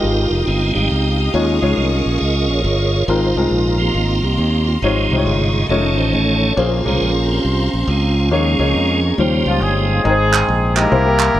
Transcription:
Already playing: G#3 D#4 F4 G4 A#4 D#5 F5 G5 D#6
0.03 G#1
0.30 F1 G4
0.46 G1 G#3 C4 F4
0.74 G#1 G3 G#3 C4 D#4 G4
0.90 C#2
1.17 G4
1.34 D#2 D#3 G#3 C#4 D#4 F4 G#4 C#5 C#6
1.60 C#2 F3 G#3 C#4 D#4 F4 C#5
1.76 C2 C#4 F4 A#4
2.06 A#1
2.20 C#2 G#4 A#4 D#5
2.50 A#1 C#5
2.64 G1 F4 G#4 C#5
3.08 G#1 G#2 G#3 C4 D#4 F4 A#4 C5 A#5 C6
3.35 C2 G#3 C4 D#4 F4 A#4
3.51 A#1
3.79 F3 A#3 C4 G4
3.94 G#1 A#3 C4 F4
4.22 C2 A#3 C4 G4
4.38 D#2
4.67 F4
4.82 G#1 G#2 D#3 F3 G#3 C4 D#4 F4 G4 C#5 D#5 C#6
5.10 C2 C3 D#4 F4 C5
5.18 C#5
5.26 G1 C3 F4 G#4
5.69 F1 D#3 G#3 A3 C#4 D#4 F4 A4 C#5 A5
5.75 A3
5.97 A1 C5
6.13 A1 A4 C#5
6.56 A#1 A#2 A#3 C#4 F4 G#4 C5 F5 A#5 C6
6.85 C2 C#3 G#3 A#3 C#4 F4 G#4 A#4 C5
7.02 A#1
7.31 C4 C#4 G4
7.45 C2
7.74 A#1
7.87 C#2 G#3 C#4 F4
8.31 D#2 D#3 F3 G#3 A#3 C#4 D#4 G#4 C#5 D#5 A#5 C#6
8.59 C#2 A#3 D#4 G#4 C#5
8.74 F2
9.18 D#2 C#3 D#3 F3 G3 A#3 C#4 D#4 F4 G4 C5 F5 G5 C6
9.46 C#2 F3 F4
9.61 G1 G#3 C4 C#4 G#4
10.04 G#1 G#2 G#3 C4 D#4 G#4 A#4 G5
10.10 C5
10.33 clap
10.48 A#1
10.75 G#3 A#3 D#4 E4 G4 A#4 D#5, clap
10.91 C2 C3 A#3 E4 G4 C5
11.05 A#3 E4 G4 A#4
11.19 clap
11.34 G1

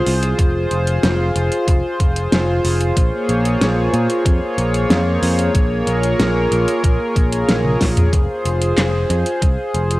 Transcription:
Already playing: F4 G#4 C5
0.06 C2, open hi-hat
0.23 closed hi-hat
0.39 F1, kick, closed hi-hat
0.71 F1, closed hi-hat
0.87 closed hi-hat
1.03 F1, snare, closed hi-hat
1.36 F1, closed hi-hat
1.52 closed hi-hat
1.68 F1, kick, closed hi-hat
2.00 F1, kick, closed hi-hat
2.16 closed hi-hat
2.32 F1, snare, closed hi-hat
2.64 F1, open hi-hat
2.81 closed hi-hat
2.97 A#1 A#3 G#4 C#5, kick, closed hi-hat
3.29 A#1, closed hi-hat
3.45 closed hi-hat
3.61 A#1, snare, closed hi-hat
3.93 A#2, closed hi-hat
4.10 closed hi-hat
4.26 F2, kick, closed hi-hat
4.58 A#1, closed hi-hat
4.74 closed hi-hat
4.90 F2, snare, closed hi-hat
5.22 F2, open hi-hat
5.39 closed hi-hat
5.55 A#1 A#4, kick, closed hi-hat
5.87 A#1, closed hi-hat
6.03 closed hi-hat
6.19 A#1, snare, closed hi-hat
6.52 A#1, closed hi-hat
6.68 closed hi-hat
6.84 A#1, kick, closed hi-hat
7.16 A#1, kick, closed hi-hat
7.32 closed hi-hat
7.49 A#1, snare, closed hi-hat
7.65 high tom
7.81 A#1, kick, snare, open hi-hat
7.97 closed hi-hat, mid tom
8.13 F1 F4 C5, kick, closed hi-hat
8.45 F1, closed hi-hat
8.62 closed hi-hat
8.77 F1, snare, clap, closed hi-hat
9.10 F2, closed hi-hat
9.26 closed hi-hat
9.42 C2, kick, closed hi-hat
9.74 F1, closed hi-hat
9.91 closed hi-hat

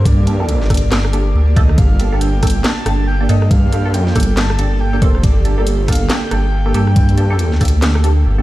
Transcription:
Already playing: G2 A#3 G4 A#4
0.05 D5, kick, closed hi-hat
0.27 A#3 D4 G4 A4, closed hi-hat
0.40 A#3 D4 G4 A4
0.49 closed hi-hat
0.61 snare
0.70 G1 A#3 D4 G4 A4, kick, cross-stick, open hi-hat
0.74 closed hi-hat
0.77 closed hi-hat
0.92 snare, clap, closed hi-hat
1.05 cross-stick
1.13 A#3 D4 G4 A4, closed hi-hat
1.35 D2
1.56 A#3 D4 G4 A4 D#5, kick, closed hi-hat
1.69 cross-stick
1.78 G1 A4 F5, kick, closed hi-hat
1.99 A#3 D4 G4 A4, closed hi-hat
2.12 A#3 D4 G4 A4
2.21 G5, closed hi-hat
2.43 A#3 D4 G4 A4, kick, cross-stick, open hi-hat
2.47 closed hi-hat
2.50 closed hi-hat
2.64 A5, snare, clap, closed hi-hat
2.86 G1 A#3 D4 G4 A4, cross-stick, closed hi-hat
3.07 G5
3.20 A#3 D4 G4 A4
3.29 G2 A#3 D4 G4 A4 D#5, closed hi-hat
3.42 cross-stick
3.50 F5, kick, closed hi-hat
3.72 A#3 D4 G4 A4, closed hi-hat
3.85 F#2 A#3 D4 G4 A4
3.93 G5, closed hi-hat
4.07 snare
4.15 G1 A#3 D4 G4 A4, kick, cross-stick, open hi-hat
4.20 closed hi-hat
4.23 closed hi-hat
4.37 A5, snare, clap, closed hi-hat
4.50 cross-stick
4.59 G1 A#3 D4 G4 A4, closed hi-hat
4.80 G5
4.93 A#3 D4 G4 A4
5.02 F1 A#3 D4 G4 A4 C5, kick, closed hi-hat
5.15 cross-stick
5.23 G1 D5, kick, closed hi-hat
5.45 A#3 D4 G4 A4, closed hi-hat
5.58 A#3 D4 G4 A4
5.67 closed hi-hat
5.88 A#3 D4 G4 A4 F5, kick, cross-stick, open hi-hat
5.92 closed hi-hat
5.95 closed hi-hat
6.10 G5, snare, clap, closed hi-hat
6.31 G1 A#3 D4 G4 A4, cross-stick, closed hi-hat
6.66 A#3 D4 G4 A4
6.74 G2 A#3 D4 G4 A4, closed hi-hat
6.87 cross-stick
6.96 kick, closed hi-hat
7.09 closed hi-hat
7.17 A#3 D4 G4 A4, closed hi-hat
7.30 A#3 D4 G4 A4
7.39 closed hi-hat
7.52 snare
7.61 D2 A#3 D4 G4 A4, kick, cross-stick, open hi-hat
7.65 closed hi-hat
7.68 closed hi-hat
7.82 snare, clap, closed hi-hat
7.95 cross-stick
8.04 A#3 D4 G4 A4, closed hi-hat
8.26 G1
8.38 A#3 D4 G4 A4

